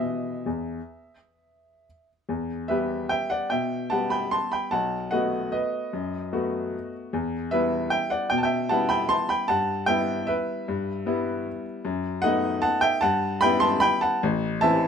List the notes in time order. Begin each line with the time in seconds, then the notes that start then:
Already playing: E3 B3 G4 D#5 E5
0.00 B2
0.46 E2
2.29 E2
2.68 G3 B3 G4 B4 E5
3.09 E5 G5
3.30 D5 F#5
3.50 B2 E5 G5
3.90 G3 B3 G4 F#5 A5
4.10 G5 B5
4.31 A5 C6
4.52 G5 B5
4.71 B1 F#5 A5
5.11 A3 B3 F#4 D#5 F#5
5.52 B4 D#5
5.93 F#2
6.33 A3 B3 F#4
7.13 E2
7.51 G3 B3 E4 B4 E5
7.90 E5 G5
8.10 D5 F#5
8.30 B2 G5
8.38 A5
8.43 E5 G5
8.69 G3 B3 E4 F#5 A5
8.89 G5 B5
9.09 A5 C6
9.29 G5 B5
9.48 G2 F#5 A5
9.86 G3 B3 E4 E5 G5
10.27 B4 E5
10.68 G2
11.06 G3 B3 E4
11.85 F#2
12.22 A3 B3 D#4 D#5 F#5
12.62 F#5 A5
12.81 E5 G5
13.01 G2 F#5 A5
13.41 G3 B3 E4 G5 B5
13.60 A5 C6
13.80 G5 B5
14.01 F#5 A5
14.23 A1
14.61 E3 C4 E4 E5 A5